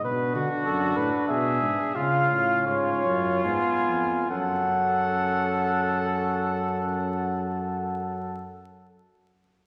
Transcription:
0.04 B2 D4 F#4 B4
0.35 D3 F#4
0.65 F#2 A4
0.96 A2 B4
1.28 B2 G#4 E5
1.61 G#2
1.95 C#3 C#4 F4 F5
2.31 A2
2.67 G#2 F4 C#5
3.05 F#2
3.44 G#2 B3 G#5
3.86 F2
4.30 F#2 C#4 A4 F#5

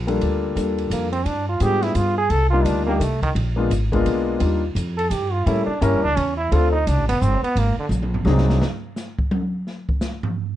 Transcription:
Already playing: A#1
0.07 G3 A#3 D4 F4 A4, ride
0.21 D2, kick, ride
0.55 D#2 G3 A#3 D4 F4 A4, kick, hi-hat pedal, ride
0.78 ride
0.90 F2 A#3, kick, hi-hat pedal, ride
1.12 C4, ride
1.25 G2 D4, kick, ride
1.49 F4
1.60 G#2 G3 B3 D4 F4 G4 G#4, kick, hi-hat pedal, ride
1.82 E4, snare, ride
1.95 G2 F4, kick, hi-hat pedal, ride
2.18 G#4
2.30 C2 A4, kick, ride
2.51 G3 A#3 D4 D#4 F4
2.65 D2 D4, kick, hi-hat pedal, ride
2.86 G3 A#3 D4 D#4 G4
3.00 C2 A3, kick, hi-hat pedal, ride
3.22 D#3, kick, ride
3.35 A#1, kick, ride
3.56 G#3 A#3 B3 D4 F4
3.70 G#1, kick, hi-hat pedal, ride
3.92 G#3 A#3 B3 D4 F4, kick, ride
4.05 B1, kick, ride
4.39 D#2 G3 A#3 D4 D#4 F4, kick, ride
4.75 F2, kick, hi-hat pedal, ride
4.97 A4, ride
5.10 G2 G4, kick, hi-hat pedal, ride
5.33 F4
5.46 A2 G3 A#3 C#4 E4 A4, kick, ride
5.66 D4, muted upright bass stroke
5.81 G2 G3 A#3 C#4 E4 A#4, kick, hi-hat pedal, ride
5.93 E2
6.02 C#2 D4
6.17 E2 C#4, kick, ride
6.37 E4
6.51 D2 A3 C4 D4 F4 A4, kick, ride
6.72 D#4
6.87 C2 D4, kick, hi-hat pedal, ride
6.97 A1
7.09 F1 B3, ride
7.22 G1 C4, kick, hi-hat pedal
7.42 B3, muted upright bass stroke, ride
7.56 G#1 A#3, kick, ride
7.80 D3
7.89 A#1, hi-hat pedal, high tom
8.03 high tom
8.14 floor tom
8.25 C2 F#3 C4 D4 D#4 G#4, snare
8.38 snare
8.50 snare
8.62 snare
8.96 snare, hi-hat pedal
9.19 kick
9.31 high tom
9.67 snare
9.89 kick
10.01 snare, hi-hat pedal
10.23 floor tom

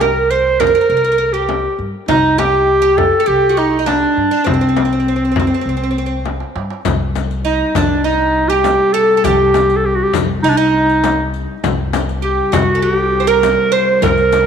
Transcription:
Already playing: C2
0.00 A#4, darbuka tek, frame drum
0.16 darbuka ka
0.31 C5
0.60 A#4, darbuka dum, frame drum
0.67 A#4
0.75 A#4
0.81 A#4
0.89 C2 A#4
0.97 A#4
1.04 A#4, darbuka ka
1.12 A#4
1.18 A#4
1.33 G4
1.49 darbuka tek, frame drum
1.65 darbuka ka
1.79 G2, darbuka ka
2.08 C2 D#4, frame drum, darbuka dum
2.38 G4, darbuka tek, frame drum
2.54 darbuka ka
2.82 G4
2.98 A4, frame drum, darbuka dum
3.20 A4
3.26 C2 G4
3.43 darbuka ka
3.49 F#4
3.57 D#4
3.79 D#4
3.86 D4, darbuka tek, frame drum
4.17 G2, darbuka ka
4.31 D4
4.44 C2 C4, darbuka dum, frame drum
4.54 C4
4.61 C4
4.69 C4
4.77 C4, darbuka tek, frame drum
4.85 C4
4.92 C4, darbuka ka
5.00 C4
5.07 C4, darbuka ka
5.16 C4
5.25 C4
5.32 C4
5.36 C4, frame drum, darbuka dum
5.47 C4
5.54 C4
5.61 C4
5.66 C2 C4, darbuka ka
5.77 C4
5.81 C4, darbuka ka
5.91 C4
5.98 C4
6.06 C4
6.26 darbuka tek, frame drum
6.40 darbuka ka
6.56 G2, darbuka tek
6.70 darbuka ka
6.85 C2, riq, frame drum, darbuka dum
7.16 riq, frame drum
7.31 riq
7.45 D#4
7.75 C2 D4, riq, darbuka dum, frame drum
8.04 D#4
8.49 G4, riq
8.64 riq, darbuka tek, frame drum
8.93 A4, riq
9.17 A4
9.24 C2 G4, riq, frame drum, darbuka dum
9.54 riq, darbuka tek, frame drum
9.70 riq
9.77 A4
9.86 G4
9.96 F#4
10.04 G4
10.14 C2, riq, frame drum, darbuka dum
10.43 C2 D#4
10.50 D4
10.57 D#4
10.90 riq
11.04 riq, darbuka tek, frame drum
11.34 riq, darbuka ka
11.64 C2, riq, darbuka dum, frame drum
11.93 riq, darbuka tek, frame drum
12.09 riq
12.22 G4
12.52 C2 F#4, riq, frame drum, darbuka dum
12.75 A4
12.82 F#4 G4
12.95 G4
13.20 C5
13.27 A#4, riq
13.43 riq, darbuka tek, frame drum
13.72 C5, riq, darbuka ka
14.02 C2 A#4, riq, darbuka dum, frame drum
14.18 riq
14.32 riq, darbuka tek, frame drum

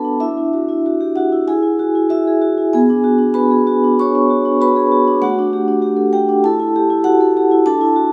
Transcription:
Already playing: D4 A4 B4 A5 B5
0.05 D4
0.20 D4 E4 E5
0.37 E4
0.53 F#4
0.69 E4
0.86 F#4
1.01 G4
1.16 F#4 F#5
1.32 E4
1.48 E4 G#4 G#5
1.63 E4
1.79 F#4
1.95 E4
2.09 E4 F#4 E5
2.27 G#4
2.42 F#4
2.58 E4
2.73 B3 G#4 G#5
2.90 D4
3.04 F#4
3.19 D4
3.34 F#4 B4 B5
3.51 G#4
3.67 F#4
3.84 D4
4.00 F#4 C#5 C#6
4.15 D4
4.30 F#4
4.45 D4
4.61 F#4 B4 B5
4.76 G#4
4.92 F#4
5.08 D4
5.22 A3 F#4 F#5
5.39 D4
5.53 G4
5.68 D4
5.82 G4
5.97 A4
6.13 G4 G5
6.29 D4
6.44 E4 A4 A5
6.60 E4
6.76 G4
6.90 E4
7.04 F#4 G4 F#5
7.21 A4
7.37 G4
7.51 E4
7.66 D4 A4 A5
7.81 E4
7.96 F#4

